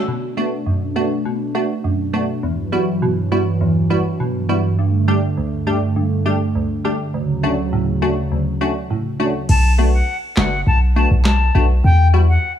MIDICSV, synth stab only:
0, 0, Header, 1, 2, 480
1, 0, Start_track
1, 0, Key_signature, 2, "minor"
1, 0, Tempo, 588235
1, 64, Time_signature, 4, 2, 24, 8
1, 10275, End_track
2, 0, Start_track
2, 0, Title_t, "Synth stab"
2, 0, Program_c, 0, 62
2, 64, Note_on_c, 0, 47, 83
2, 302, Note_on_c, 0, 57, 92
2, 304, Note_on_c, 0, 59, 82
2, 305, Note_on_c, 0, 62, 83
2, 306, Note_on_c, 0, 66, 96
2, 399, Note_off_c, 0, 57, 0
2, 400, Note_off_c, 0, 59, 0
2, 400, Note_off_c, 0, 62, 0
2, 401, Note_off_c, 0, 66, 0
2, 421, Note_off_c, 0, 47, 0
2, 541, Note_on_c, 0, 42, 85
2, 781, Note_on_c, 0, 59, 79
2, 782, Note_on_c, 0, 57, 86
2, 783, Note_on_c, 0, 62, 78
2, 784, Note_on_c, 0, 66, 97
2, 879, Note_off_c, 0, 57, 0
2, 879, Note_off_c, 0, 59, 0
2, 879, Note_off_c, 0, 62, 0
2, 880, Note_off_c, 0, 66, 0
2, 900, Note_off_c, 0, 42, 0
2, 1024, Note_on_c, 0, 47, 90
2, 1262, Note_on_c, 0, 57, 89
2, 1263, Note_on_c, 0, 59, 83
2, 1263, Note_on_c, 0, 62, 83
2, 1264, Note_on_c, 0, 66, 97
2, 1359, Note_off_c, 0, 57, 0
2, 1359, Note_off_c, 0, 59, 0
2, 1359, Note_off_c, 0, 62, 0
2, 1360, Note_off_c, 0, 66, 0
2, 1381, Note_off_c, 0, 47, 0
2, 1503, Note_on_c, 0, 42, 84
2, 1741, Note_on_c, 0, 57, 90
2, 1742, Note_on_c, 0, 59, 78
2, 1743, Note_on_c, 0, 62, 77
2, 1743, Note_on_c, 0, 66, 90
2, 1838, Note_off_c, 0, 57, 0
2, 1839, Note_off_c, 0, 59, 0
2, 1839, Note_off_c, 0, 62, 0
2, 1840, Note_off_c, 0, 66, 0
2, 1860, Note_off_c, 0, 42, 0
2, 1984, Note_on_c, 0, 40, 91
2, 2222, Note_on_c, 0, 55, 91
2, 2223, Note_on_c, 0, 59, 80
2, 2224, Note_on_c, 0, 64, 78
2, 2225, Note_on_c, 0, 66, 96
2, 2319, Note_off_c, 0, 55, 0
2, 2320, Note_off_c, 0, 59, 0
2, 2320, Note_off_c, 0, 64, 0
2, 2320, Note_off_c, 0, 66, 0
2, 2341, Note_off_c, 0, 40, 0
2, 2465, Note_on_c, 0, 47, 88
2, 2706, Note_on_c, 0, 55, 85
2, 2706, Note_on_c, 0, 59, 78
2, 2707, Note_on_c, 0, 64, 82
2, 2708, Note_on_c, 0, 66, 92
2, 2801, Note_off_c, 0, 55, 0
2, 2801, Note_off_c, 0, 59, 0
2, 2802, Note_off_c, 0, 64, 0
2, 2802, Note_off_c, 0, 66, 0
2, 2822, Note_off_c, 0, 47, 0
2, 2945, Note_on_c, 0, 40, 88
2, 3183, Note_on_c, 0, 55, 88
2, 3185, Note_on_c, 0, 59, 84
2, 3185, Note_on_c, 0, 64, 81
2, 3187, Note_on_c, 0, 66, 98
2, 3280, Note_off_c, 0, 55, 0
2, 3280, Note_off_c, 0, 59, 0
2, 3281, Note_off_c, 0, 64, 0
2, 3281, Note_off_c, 0, 66, 0
2, 3301, Note_off_c, 0, 40, 0
2, 3427, Note_on_c, 0, 47, 89
2, 3664, Note_on_c, 0, 55, 89
2, 3665, Note_on_c, 0, 59, 79
2, 3665, Note_on_c, 0, 64, 80
2, 3667, Note_on_c, 0, 66, 97
2, 3760, Note_off_c, 0, 55, 0
2, 3761, Note_off_c, 0, 59, 0
2, 3761, Note_off_c, 0, 64, 0
2, 3761, Note_off_c, 0, 66, 0
2, 3783, Note_off_c, 0, 47, 0
2, 3906, Note_on_c, 0, 43, 88
2, 4144, Note_on_c, 0, 55, 90
2, 4145, Note_on_c, 0, 57, 81
2, 4146, Note_on_c, 0, 62, 86
2, 4146, Note_on_c, 0, 67, 99
2, 4240, Note_off_c, 0, 55, 0
2, 4240, Note_off_c, 0, 57, 0
2, 4241, Note_off_c, 0, 62, 0
2, 4241, Note_off_c, 0, 67, 0
2, 4262, Note_off_c, 0, 43, 0
2, 4385, Note_on_c, 0, 38, 86
2, 4624, Note_on_c, 0, 55, 86
2, 4625, Note_on_c, 0, 57, 80
2, 4626, Note_on_c, 0, 62, 80
2, 4626, Note_on_c, 0, 67, 98
2, 4720, Note_off_c, 0, 55, 0
2, 4720, Note_off_c, 0, 57, 0
2, 4721, Note_off_c, 0, 62, 0
2, 4721, Note_off_c, 0, 67, 0
2, 4742, Note_off_c, 0, 38, 0
2, 4865, Note_on_c, 0, 43, 87
2, 5104, Note_on_c, 0, 55, 85
2, 5105, Note_on_c, 0, 57, 84
2, 5106, Note_on_c, 0, 62, 80
2, 5107, Note_on_c, 0, 67, 100
2, 5200, Note_off_c, 0, 55, 0
2, 5200, Note_off_c, 0, 57, 0
2, 5201, Note_off_c, 0, 62, 0
2, 5201, Note_off_c, 0, 67, 0
2, 5221, Note_off_c, 0, 43, 0
2, 5346, Note_on_c, 0, 38, 88
2, 5586, Note_on_c, 0, 55, 87
2, 5587, Note_on_c, 0, 57, 78
2, 5587, Note_on_c, 0, 62, 78
2, 5589, Note_on_c, 0, 67, 92
2, 5681, Note_off_c, 0, 55, 0
2, 5681, Note_off_c, 0, 57, 0
2, 5681, Note_off_c, 0, 62, 0
2, 5682, Note_off_c, 0, 67, 0
2, 5702, Note_off_c, 0, 38, 0
2, 5827, Note_on_c, 0, 38, 90
2, 6065, Note_on_c, 0, 57, 89
2, 6067, Note_on_c, 0, 61, 82
2, 6067, Note_on_c, 0, 62, 84
2, 6068, Note_on_c, 0, 66, 98
2, 6160, Note_off_c, 0, 57, 0
2, 6161, Note_off_c, 0, 61, 0
2, 6162, Note_off_c, 0, 62, 0
2, 6162, Note_off_c, 0, 66, 0
2, 6183, Note_off_c, 0, 38, 0
2, 6306, Note_on_c, 0, 45, 89
2, 6545, Note_on_c, 0, 57, 86
2, 6545, Note_on_c, 0, 61, 79
2, 6545, Note_on_c, 0, 62, 80
2, 6547, Note_on_c, 0, 66, 95
2, 6640, Note_off_c, 0, 57, 0
2, 6640, Note_off_c, 0, 61, 0
2, 6641, Note_off_c, 0, 62, 0
2, 6641, Note_off_c, 0, 66, 0
2, 6662, Note_off_c, 0, 45, 0
2, 6786, Note_on_c, 0, 38, 89
2, 7025, Note_on_c, 0, 57, 88
2, 7026, Note_on_c, 0, 61, 81
2, 7027, Note_on_c, 0, 62, 82
2, 7027, Note_on_c, 0, 66, 100
2, 7120, Note_off_c, 0, 57, 0
2, 7121, Note_off_c, 0, 61, 0
2, 7121, Note_off_c, 0, 62, 0
2, 7122, Note_off_c, 0, 66, 0
2, 7142, Note_off_c, 0, 38, 0
2, 7266, Note_on_c, 0, 45, 88
2, 7504, Note_on_c, 0, 57, 91
2, 7505, Note_on_c, 0, 61, 80
2, 7505, Note_on_c, 0, 62, 79
2, 7506, Note_on_c, 0, 66, 98
2, 7600, Note_off_c, 0, 57, 0
2, 7600, Note_off_c, 0, 61, 0
2, 7600, Note_off_c, 0, 62, 0
2, 7601, Note_off_c, 0, 66, 0
2, 7622, Note_off_c, 0, 45, 0
2, 7983, Note_on_c, 0, 57, 79
2, 7984, Note_on_c, 0, 59, 71
2, 7985, Note_on_c, 0, 62, 71
2, 7987, Note_on_c, 0, 66, 85
2, 8079, Note_off_c, 0, 57, 0
2, 8080, Note_off_c, 0, 59, 0
2, 8080, Note_off_c, 0, 62, 0
2, 8081, Note_off_c, 0, 66, 0
2, 8463, Note_on_c, 0, 57, 74
2, 8465, Note_on_c, 0, 59, 68
2, 8465, Note_on_c, 0, 62, 72
2, 8466, Note_on_c, 0, 66, 82
2, 8559, Note_off_c, 0, 57, 0
2, 8560, Note_off_c, 0, 59, 0
2, 8560, Note_off_c, 0, 62, 0
2, 8561, Note_off_c, 0, 66, 0
2, 8944, Note_on_c, 0, 57, 77
2, 8945, Note_on_c, 0, 59, 68
2, 8945, Note_on_c, 0, 62, 67
2, 8946, Note_on_c, 0, 66, 83
2, 9040, Note_off_c, 0, 57, 0
2, 9040, Note_off_c, 0, 59, 0
2, 9040, Note_off_c, 0, 62, 0
2, 9041, Note_off_c, 0, 66, 0
2, 9423, Note_on_c, 0, 57, 76
2, 9424, Note_on_c, 0, 62, 67
2, 9425, Note_on_c, 0, 59, 69
2, 9426, Note_on_c, 0, 66, 80
2, 9519, Note_off_c, 0, 57, 0
2, 9520, Note_off_c, 0, 59, 0
2, 9520, Note_off_c, 0, 62, 0
2, 9521, Note_off_c, 0, 66, 0
2, 9902, Note_on_c, 0, 55, 76
2, 9902, Note_on_c, 0, 59, 71
2, 9904, Note_on_c, 0, 64, 71
2, 9905, Note_on_c, 0, 66, 85
2, 9999, Note_off_c, 0, 55, 0
2, 9999, Note_off_c, 0, 59, 0
2, 10000, Note_off_c, 0, 64, 0
2, 10000, Note_off_c, 0, 66, 0
2, 10275, End_track
0, 0, End_of_file